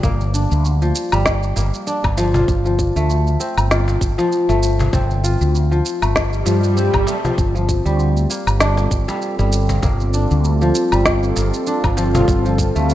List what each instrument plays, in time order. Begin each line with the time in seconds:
Already playing: kora F3 G3 D4
0.03 fretless electric bass G1, kora A#3, cajon bass, kick, shaker
0.21 shaker
0.34 kora D4, shaker
0.51 fretless electric bass D2, shaker
0.65 shaker
0.82 kora F3, shaker
0.95 shaker
1.12 fretless electric bass G1, kora G3, low woodblock, shaker
1.26 kick, snare, shaker
1.43 shaker
1.56 fretless electric bass G1, kora A#3, cajon slap, shaker
1.74 shaker
1.87 kora D4, shaker
2.04 fretless electric bass G1, kick, cajon slap, low woodblock, shaker
2.17 kora F3, cajon slap, shaker
2.34 kora F4, cajon bass, shaker
2.48 fretless electric bass G1, kick, shaker
2.66 kora F3, shaker
2.79 kick, shaker
2.96 fretless electric bass D2, kora A3, shaker
3.10 shaker
3.27 shaker
3.40 kora C4, shaker
3.57 fretless electric bass G1, low woodblock, shaker
3.71 kora F4, snare, shaker
3.88 cajon slap, shaker
4.01 fretless electric bass G1, kick, shaker
4.18 kora F3, cajon slap, shaker
4.32 shaker
4.49 fretless electric bass G1, kora A3, cajon slap, shaker
4.63 shaker
4.79 cajon bass, cajon slap, shaker
4.93 fretless electric bass G1, kora C4, kick, cajon bass, shaker
5.11 shaker
5.24 kora F4, cajon slap, shaker
5.41 fretless electric bass D2, shaker
5.55 shaker
5.71 kora F3, shaker
5.85 shaker
6.02 fretless electric bass G1, kora A3, low woodblock, shaker
6.15 kick, cajon slap, snare, swell, shaker
6.33 shaker
6.46 fretless electric bass G2, kora F3, cajon slap, shaker
6.64 shaker
6.77 kora C4, shaker
6.93 fretless electric bass G1, cajon bass, kick, cajon slap, low woodblock, shaker
7.07 kora A3, cajon slap, shaker
7.24 kora F3, cajon bass, shaker
7.38 fretless electric bass G1, analog synth pad G3, kick, shaker
7.50 analog synth pad C4
7.55 kora F3, shaker
7.69 kick, shaker
7.86 fretless electric bass D2, kora G3, shaker
7.99 shaker
8.17 shaker
8.26 analog synth pad F4
8.30 kora A#3, shaker
8.47 fretless electric bass G1, low woodblock, shaker
8.60 kora D4, snare, shaker
8.66 analog synth pad A4
8.77 cajon slap, shaker
8.91 fretless electric bass G1, kick, shaker
9.08 kora G3, cajon slap, shaker
9.22 shaker
9.39 fretless electric bass G1, kora G3, cajon slap, shaker
9.52 shaker
9.69 cajon bass, cajon slap, shaker
9.83 fretless electric bass G1, kora A#3, cajon bass, kick, shaker
10.00 shaker
10.14 kora D4, shaker
10.31 fretless electric bass D2, shaker
10.44 shaker
10.61 kora F3, shaker
10.75 shaker
10.92 fretless electric bass G1, kora G3, low woodblock, shaker
11.06 kick, snare, shaker
11.23 shaker
11.36 fretless electric bass G1, kora A#3, cajon slap, shaker
11.54 shaker
11.67 kora D4, shaker
11.84 fretless electric bass G1, kick, cajon slap, low woodblock, shaker
11.97 kora F3, cajon slap, shaker
12.15 kora F4, cajon bass, shaker
12.28 fretless electric bass G1, kick, shaker
12.45 kora F3, shaker
12.58 kick, shaker
12.76 fretless electric bass D2, kora A3, shaker
12.89 shaker